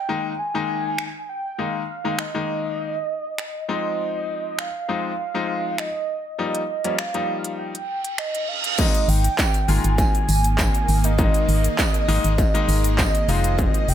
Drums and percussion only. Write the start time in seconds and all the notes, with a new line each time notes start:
0.98 finger snap
2.19 finger snap
3.38 finger snap
4.59 finger snap
5.78 finger snap
6.55 closed hi-hat
6.84 closed hi-hat
6.99 finger snap
7.14 closed hi-hat
7.44 closed hi-hat
7.75 closed hi-hat
8.04 closed hi-hat
8.18 finger snap
8.35 closed hi-hat
8.64 closed hi-hat
8.78 kick, crash, tambourine, shaker
8.94 closed hi-hat, shaker
9.09 open hi-hat, tambourine, shaker
9.24 closed hi-hat, shaker
9.38 kick, clap, tambourine, shaker
9.54 closed hi-hat, shaker
9.68 open hi-hat, tambourine, shaker
9.84 closed hi-hat, shaker
9.98 kick, tambourine, shaker
10.15 closed hi-hat, shaker
10.29 open hi-hat, tambourine, shaker
10.44 closed hi-hat, shaker
10.58 kick, clap, tambourine, shaker
10.75 closed hi-hat, shaker
10.88 open hi-hat, tambourine, shaker
11.04 closed hi-hat, shaker
11.18 kick, shaker
11.34 closed hi-hat, shaker
11.49 open hi-hat, shaker
11.64 closed hi-hat, shaker
11.78 kick, clap, tambourine, shaker
11.94 closed hi-hat, shaker
12.08 open hi-hat, tambourine, shaker
12.24 closed hi-hat, shaker
12.38 kick, tambourine, shaker
12.55 closed hi-hat, shaker
12.69 open hi-hat, tambourine, shaker
12.84 closed hi-hat, shaker
12.98 kick, clap, tambourine, shaker
13.15 closed hi-hat, shaker
13.29 open hi-hat, tambourine, shaker
13.44 closed hi-hat, shaker
13.59 kick, shaker
13.74 closed hi-hat, shaker
13.88 open hi-hat, shaker